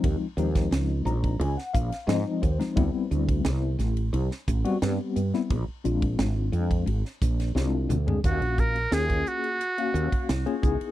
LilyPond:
<<
  \new Staff \with { instrumentName = "Muted trumpet" } { \time 4/4 \key bes \phrygian \tempo 4 = 88 r1 | r1 | r1 | \key ees \minor ges'8 bes'8 aes'8 ges'4. r4 | }
  \new Staff \with { instrumentName = "Tine electric piano" } { \time 4/4 \key bes \phrygian << { r4. bes''8 aes''16 ges''16 f''8 ees''8 c''8 | r1 | r1 | \key ees \minor r1 | } \\ { <f aes c' ees'>16 r16 <f aes c' ees'>4. r4 <f aes c' ees'>8 r16 <f aes c' ees'>16 | <g b c' e'>4. r4 r16 <g b c' ges'>16 <g b c' g'>8 r16 <g b c' e'>16 | r8 <aes c' d' f'>4. r4 <aes c' d' f'>8 r16 <aes c' d' aes'>16 | <bes des' ges' f''>8. r16 <bes des' f' aes'>4 r16 <bes des' ges' f''>8. r16 <bes des' f' aes'>16 <ces' ees' fes' aes'>8 | } >> }
  \new Staff \with { instrumentName = "Fretless electric bass" } { \clef bass \time 4/4 \key bes \phrygian ees,16 r16 ees,8 des,8 bes,,8 des,16 r16 bes,,16 r16 aes,16 r16 ees,16 r16 | d,16 r16 d,8 c,8 a,,8 c,16 r16 a,,16 r16 g,16 r16 g,16 r16 | bes,,16 r16 bes,,8 aes,,8 f,8 aes,,16 r16 bes,,8 c,8 d,8 | \key ees \minor ees,16 bes,,8. ees,8 r4 ees,16 r16 c,16 r16 des,16 r16 | }
  \new DrumStaff \with { instrumentName = "Drums" } \drummode { \time 4/4 <bd cymr>8 <hhp cymr>16 <bd cymr sn>16 <cymr sn>8 <hhp cymr>16 <bd cymr>16 cymr16 sn16 <hhp bd cymr>16 <cymr sn>16 <cymr sn>8 <hhp bd cymr>16 <cymr sn>16 | <bd cymr>8 <hhp cymr>16 <bd cymr>16 <cymr sn>8 <hhp cymr sn>16 cymr16 cymr16 sn16 <hhp bd cymr>16 cymr16 <cymr sn>8 <hhp cymr>16 sn16 | <bd cymr>8 <hhp cymr>16 <bd cymr>16 <cymr sn>8 <hhp cymr>16 <bd cymr>16 cymr16 sn16 <hhp bd cymr>16 <cymr sn>16 sn8 <hhp toml>16 tomfh16 | <hhp bd cymr>16 cymr16 <hhp bd>16 cymr16 <hhp cymr sn>16 <bd cymr>16 hhp16 cymr16 <hhp cymr>16 cymr16 hhp16 <bd cymr>16 <hhp cymr sn>16 cymr16 <hhp bd>16 cymr16 | }
>>